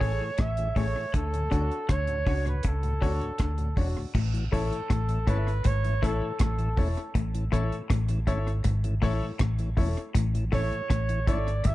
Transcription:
Already playing: C#5
0.00 A1 A2 A3 C#4 G#4 A4 C#5, kick, open hi-hat
0.21 A2 E3
0.38 A1 A2 E5, kick, cross-stick, closed hi-hat
0.57 A2 E3, closed hi-hat
0.76 A1 A2 A3 C#4 G#4 A4 C#5, kick, open hi-hat
0.96 A2 E3
1.14 D2 D3 A4, kick, closed hi-hat
1.34 D2 A2, closed hi-hat
1.51 D2 D3 C#4 D4 F#4 C#5, kick, cross-stick, closed hi-hat
1.71 closed hi-hat
1.89 D2 D3 C#5, kick, cross-stick, closed hi-hat
2.07 D2 A2, closed hi-hat
2.26 C#2 C#3 C#4 D4 F#4 C#5, kick, open hi-hat
2.45 D2 A2 B4, closed hi-hat
2.63 C#2 C#3, kick, closed hi-hat
2.67 A4
2.83 D2 A2, closed hi-hat
3.01 D2 D3 C#4 D4 F#4 C#5, kick, open hi-hat
3.21 D2 A2, closed hi-hat
3.39 D2 D3, kick, cross-stick, closed hi-hat
3.58 D2 A2, closed hi-hat
3.76 E1 E2 C#4 D4 F#4 C#5, kick, open hi-hat
3.97 D2 A2
4.15 A1 A2, kick, crash
4.34 A2 E3, closed hi-hat
4.52 A1 A2 A3 C#4 E4 A4 C#5, kick, open hi-hat
4.71 A2 E3, closed hi-hat
4.90 A1 A2, kick, cross-stick, closed hi-hat
5.09 A2 E3, closed hi-hat
5.27 G#1 G#2 A3 C#4 E4 A4 B4 C#5, kick, closed hi-hat
5.48 closed hi-hat
5.64 G#1 G#2 C#5, kick, closed hi-hat
5.84 A2 E3, closed hi-hat
6.02 A1 A2 A3 C#4 E4 A4 C#5, kick, closed hi-hat
6.22 A2 E3
6.39 A1 A2 A4, kick, cross-stick, closed hi-hat
6.59 A2 E3, closed hi-hat
6.77 E1 E2 A3 C#4 E4 A4 C#5, kick, open hi-hat
6.98 closed hi-hat
7.15 A1 A2, kick, closed hi-hat
7.34 A2 E3, closed hi-hat
7.52 A1 A2 A3 C#4 E4 A4 C#5, kick, cross-stick, closed hi-hat
7.72 A2 E3, closed hi-hat
7.90 A1 A2, kick, cross-stick, closed hi-hat
8.08 A2 E3, closed hi-hat
8.27 G#1 G#2 A3 C#4 E4 A4 C#5, kick, closed hi-hat
8.48 closed hi-hat
8.64 G#1 G#2, kick, closed hi-hat
8.84 A2 E3, closed hi-hat
9.02 A1 A2 A3 C#4 E4 A4 C#5, kick, open hi-hat
9.22 A2 E3
9.39 A1 A2, kick, cross-stick, closed hi-hat
9.59 A2 E3, closed hi-hat
9.77 E1 E2 A3 C#4 E4 A4 C#5, kick, open hi-hat
9.98 closed hi-hat
10.14 A1 A2, kick, closed hi-hat
10.35 A2 E3, closed hi-hat
10.52 A1 A2 A3 C#4 E4 A4 C#5, kick, cross-stick, open hi-hat
10.72 A2 E3, closed hi-hat
10.90 A1 A2, kick, cross-stick, closed hi-hat
11.09 A2 E3, closed hi-hat
11.27 G#1 G#2 A3 C#4 E4 A4 C#5 D5, kick, closed hi-hat
11.48 closed hi-hat
11.64 G#1 G#2 E5, kick, closed hi-hat

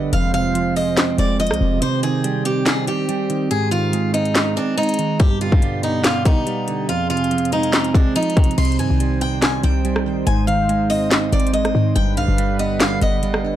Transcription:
Already playing: G1 D3 G3 B3 B4
0.13 F1 F2 G#3 F4 C5 F5, closed hi-hat
0.34 C3 F5, closed hi-hat
0.55 F3, closed hi-hat
0.76 G#3 D#5, open hi-hat
0.97 F2 C4, snare, clap, closed hi-hat
1.18 F1 G#3 D5, closed hi-hat
1.39 F3 D#5, closed hi-hat
1.47 closed hi-hat
1.51 C2, cross-stick, closed hi-hat
1.61 F1 C3
1.82 C3 D#3 C4 C5 G5, closed hi-hat
2.03 D#3 G#4, closed hi-hat
2.24 G3, closed hi-hat
2.45 C4 G4, closed hi-hat
2.66 D#4 G#4, snare, clap, closed hi-hat
2.87 C4 G4, closed hi-hat
3.09 G3, closed hi-hat
3.30 D#3, closed hi-hat
3.51 G#2 G#4, closed hi-hat
3.71 D#3 F4, closed hi-hat
3.93 G#3, closed hi-hat
4.14 C4 D#4, closed hi-hat
4.25 closed hi-hat
4.35 D#4, snare, clap, closed hi-hat
4.56 C4 D4
4.78 G#3 D#4, closed hi-hat
4.83 closed hi-hat
4.89 closed hi-hat
4.94 closed hi-hat
4.99 D#3, closed hi-hat
5.20 G2 B2 B3 G4, kick, closed hi-hat
5.41 D3 F4, closed hi-hat
5.52 kick
5.62 G3, closed hi-hat
5.83 B3 D#4, closed hi-hat
6.04 F4 D5, snare, clap, closed hi-hat
6.25 B3 D#4, kick, closed hi-hat
6.47 G3, closed hi-hat
6.68 D3, closed hi-hat
6.89 F2 F3 C4 F4 G#4, closed hi-hat
7.10 C3 F4, closed hi-hat
7.17 closed hi-hat
7.24 closed hi-hat
7.31 F3, closed hi-hat
7.38 closed hi-hat
7.45 closed hi-hat
7.52 G#3 D#4, closed hi-hat
7.63 closed hi-hat
7.73 C4, snare, clap, closed hi-hat
7.84 closed hi-hat
7.94 G#3 D4, kick
8.16 F3 D#4, closed hi-hat
8.23 closed hi-hat
8.30 closed hi-hat
8.37 C3, kick, closed hi-hat
8.44 closed hi-hat
8.51 closed hi-hat
8.58 C2 C3 G3 D#4 C5 C6, closed hi-hat, crash
8.65 closed hi-hat
8.72 closed hi-hat
8.79 G2 D#3 G#5, closed hi-hat
8.90 C2
9.00 G3, closed hi-hat
9.21 C4 G5, closed hi-hat
9.42 D#4 G#5, snare, clap, closed hi-hat
9.63 C2 C4 G5, closed hi-hat
9.85 G3, closed hi-hat
9.96 cross-stick
10.06 D#3
10.27 G#1 G#2 G#3 G#5, closed hi-hat
10.47 D#3 F5, closed hi-hat
10.69 G#3, closed hi-hat
10.90 C4 D#5, open hi-hat
11.11 D#4, snare, clap, closed hi-hat
11.32 G#1 C4 D5, closed hi-hat
11.40 closed hi-hat
11.47 closed hi-hat
11.53 G#3 D#5, closed hi-hat
11.65 cross-stick, closed hi-hat
11.75 G#2 D#3
11.96 G1 G2 D3 G3 B4 G5, closed hi-hat
12.17 B1 D3 F5, closed hi-hat
12.28 G1
12.38 G3, closed hi-hat
12.59 B3 D#5, closed hi-hat
12.80 F5, snare, clap, closed hi-hat
13.01 G1 B3 D#5, closed hi-hat
13.23 G3, closed hi-hat
13.34 cross-stick
13.44 D3

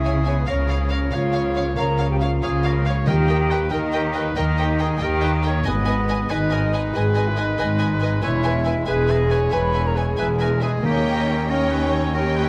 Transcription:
Already playing: C#2 C#3 E3 G#3 E4 G#4 E5
0.03 C#5 E5 G#5
0.24 B3 B4 C#5 E5 G#5
0.46 C#2 C#3 F3 A#3 C#4 A#4 C#5 F5
0.67 G#4 C#5 F5
0.89 A#4 C#5 F5
1.11 C#2 C#3 F4 C#5 F5
1.33 C#5 F5
1.54 C#5 F5
1.76 C#2 C#3 A#4 C#5 F5 A#5
1.98 C#5 F5
2.10 G4 G5
2.19 F4 C#5 F5
2.42 C#2 C#3 G#4 C#5 F5
2.63 A#4 C#5 F5
2.85 C#5 F5
3.06 D#2 D#3 G4 A#4 D#5 G5
3.28 A#4 D#5 G5
3.50 A#4 B4 D#5 G5
3.70 D#2 D#3 D#4 A#4 D#5 G5
3.93 G4 A#4 D#5 G5
4.13 A#4 B4 D#5 G5
4.36 D#2 D#3 D#4 A#4 D#5 G5
4.56 G4 A#4 D#5 G5
4.79 G#4 A#4 D#5 G5
4.98 D#2 D#3 G4 D#5 G5
5.02 A#4 G5
5.21 A#4 B4 D#5 G5
5.43 A#4 D#5 G5
5.47 C#5
5.64 G#1 G#2 B3 B4 D#5 G#5
5.68 D#3 G#3 D#5
5.85 B4 D#5 G#5
6.09 B4 D#5 G#5
6.29 G#1 G#2 D#4 B4 D#5 G#5
6.51 A#4 B4 D#5 G#5
6.73 B4 D#5 G#5
6.94 G#1 G#2 G#4 B4 D#5 G#5
7.15 B4 D#5 G#5
7.27 E4 E5
7.36 D#4 B4 D#5 G#5
7.58 G#1 G#2 B4 D#5 G#5
7.79 B4 D#5 G#5
8.01 B4 D#5 G#5
8.22 E1 E2 E3 E4 B4 C#5 E5 G#5
8.44 B4 E5 G#5
8.65 B4 E5 G#5
8.86 E1 E2 G#4 B4 E5 G#5
9.07 B4 E5 G#5
9.11 D#5
9.30 B4 C#5 E5 G#5
9.51 E1 E2 B4 E5 G#5 B5
9.72 B4 E5 G#5
9.86 A#4 A#5
9.94 G#4 B4 E5 G#5
10.17 E1 E2 B4 E5 G#5
10.39 A#4 B4 E5 G#5
10.60 G#3 G#4 B4 E5 G#5
10.81 D#2 D#3 A#3 A#4 C#5 D#5 G5
10.86 D#3 C#4 G4
11.48 C#4 A#4 C#5 D#5 G5
11.72 B4
11.92 C#5
12.12 G4 A#4 C#5 D#5 G5
12.38 B4

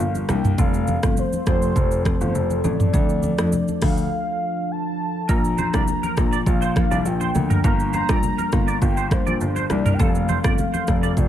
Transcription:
Already playing: G3 D4 A#4 F5
0.00 G1, shaker
0.15 high conga, shaker
0.29 C2 G3 A#3 D4 A#4 G5, cross-stick, high conga, low conga, shaker
0.45 mid tom, shaker
0.58 F1 F3 A3 C4 A4 F5, kick, shaker
0.74 shaker
0.87 high conga, shaker
1.03 G1 F3 A3 C4 A4, kick, cross-stick, shaker
1.17 C5, low conga, shaker
1.33 high conga, shaker
1.46 F1 F3 A3 C4 A4 C5, kick, cross-stick, low conga, shaker
1.62 shaker
1.76 F1, kick, low conga, shaker
1.91 shaker
2.05 F3 A3 C4 A4 C5, kick, cross-stick, high conga, shaker
2.21 G1, high conga, shaker
2.35 F1, shaker
2.50 high conga, shaker
2.64 A1 F3 A3 C4 A4 D5, high conga, low conga, shaker
2.80 mid tom, shaker
2.93 D2 F3 A3 D4 A4, kick, shaker
3.09 shaker
3.23 high conga, shaker
3.38 F2 F3 A3 D4 A4, cross-stick, shaker
3.52 low conga, shaker
3.68 high conga, shaker
3.82 D2 F3 A3 D4 A4 F5, kick, cross-stick, open hi-hat, low conga, shaker
3.97 shaker
4.71 A5
5.29 A#1 F3 A#3 D4 A#4 A#5, kick, shaker
5.45 shaker
5.58 C5 A#5, high conga, shaker
5.73 C2 F3 A#3 D4 A#4 D5, kick, cross-stick, shaker
5.88 low conga, shaker
6.03 A#4, high conga, shaker
6.17 A#1 F3 A#3 D4 A#4, kick, cross-stick, low conga, shaker
6.33 D5, shaker
6.46 A#1 F5, kick, low conga, shaker
6.62 C5, shaker
6.76 F3 A#3 D4 A#4 F5, kick, cross-stick, high conga, shaker
6.91 C2 D5, high conga, shaker
7.05 A#1 G5, shaker
7.21 C5, high conga, shaker
7.35 D2 F3 A#3 D4 A#4, high conga, low conga, shaker
7.50 A#4, mid tom, shaker
7.64 G1 G3 A#3 D4 A#4 A#5, kick, shaker
7.80 shaker
7.93 C5 A#5, high conga, shaker
8.09 A#1 G3 A#3 D4 A#4 D5, kick, cross-stick, shaker
8.23 low conga, shaker
8.38 A#4, high conga, shaker
8.52 G1 G3 A#3 D4 A#4, kick, cross-stick, low conga, shaker
8.68 D5, shaker
8.82 G1 G5, kick, low conga, shaker
8.97 C5, shaker
9.11 G3 A#3 D4 A#4 C5, kick, cross-stick, high conga, shaker
9.27 A#1 D5, high conga, shaker
9.41 G1 C5, shaker
9.56 C5, high conga, shaker
9.70 C2 G3 A#3 D4 A#4 D5, cross-stick, high conga, low conga, shaker
9.85 A#4, mid tom, shaker
9.94 G5
9.99 F1 F3 A3 C4 A4 F5, kick, shaker
10.15 shaker
10.29 C5, high conga, shaker
10.44 G1 F3 A3 C4 A4 D5, kick, cross-stick, shaker
10.58 F5, low conga, shaker
10.74 C5, high conga, shaker
10.87 F1 F3 A3 C4 A4, kick, cross-stick, low conga, shaker
11.03 D5, shaker
11.17 F1 D5, kick, low conga, shaker

